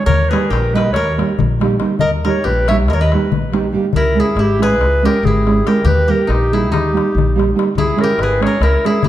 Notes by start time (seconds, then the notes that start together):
Already playing: E4 G#4
0.05 D#2 A#4 C#5, darbuka dum
0.30 G3 A#3 D#4 G4 G#4 B4, darbuka tek
0.49 A#1 G4 A#4, darbuka tek
0.65 darbuka tek
0.73 G3 A#3 D#4 G4 B4 D#5
0.78 darbuka tek
0.85 darbuka tek
0.93 D#2 A#4 C#5, darbuka tek
1.18 G3 A#3 D#4 G4, darbuka tek
1.39 A#1, darbuka dum
1.60 G3 A#3 D#4 G4, darbuka tek
1.80 G3 A#3 D#4 G4, darbuka tek
1.89 darbuka tek
1.99 D#2 A#4 D#5, darbuka dum
2.24 G3 A#3 D#4 G4 A#4 C#5, darbuka tek
2.44 A#1 G4 B4, darbuka tek
2.57 darbuka tek
2.68 G3 A#3 D#4 G4 C#5 E5, darbuka tek
2.80 darbuka tek
2.88 D#2 A#4 D#5, darbuka tek
2.93 A#4 C#5
3.01 B4 D#5
3.12 G3 A#3 D#4 G4, darbuka tek
3.32 A#1, darbuka dum
3.52 G3 A#3 D#4 G4, darbuka tek
3.73 G3 A#3 D#4 G4
3.84 darbuka tek
3.93 C#2 E4 A#4, darbuka dum
4.15 G#3 C#4 E4 G#4
4.20 E4 G#4
4.35 G#1 E4, darbuka tek
4.41 G4
4.50 darbuka tek
4.58 G#3 C#4 E4 G#4
4.62 G#4 B4, darbuka tek
4.73 darbuka tek
4.80 C#2, darbuka tek
5.03 G#3 C#4 E4 G4 G#4 A#4, darbuka tek
5.23 G#1 E4 G#4, darbuka dum
5.46 G#3 C#4 E4 G#4, darbuka tek
5.66 G#3 C#4 E4 G4 G#4 A#4, darbuka tek
5.77 darbuka tek
5.84 D#2 G4 B4, darbuka dum
5.98 darbuka tek
6.08 G3 A#3 D#4 G4 A#4
6.27 A#1 D#4, darbuka tek
6.32 G4
6.42 darbuka tek
6.52 G3 A#3 D#4 E4 G4 G#4
6.71 D#2 D#4 G4, darbuka tek, darbuka dum
6.92 G3 A#3 D#4 G4
6.97 darbuka tek
7.08 darbuka tek
7.15 A#1, darbuka dum
7.29 darbuka tek
7.35 G3 A#3 D#4 G4, darbuka tek
7.50 darbuka tek
7.55 G3 A#3 D#4 G4, darbuka tek
7.75 C#2 E4 G#4, darbuka dum
7.90 darbuka tek
7.96 G#3 C#4 E4 G#4, darbuka tek
8.01 G4 A#4
8.18 G#1 B4, darbuka tek
8.23 G#4
8.31 darbuka tek
8.40 G#3 C#4 E4 G#4 C#5, darbuka tek
8.47 A#4
8.52 darbuka tek
8.60 C#2 E4 A#4, darbuka tek
8.85 G#3 C#4 E4 G#4, darbuka tek
9.03 G#1 E4, darbuka dum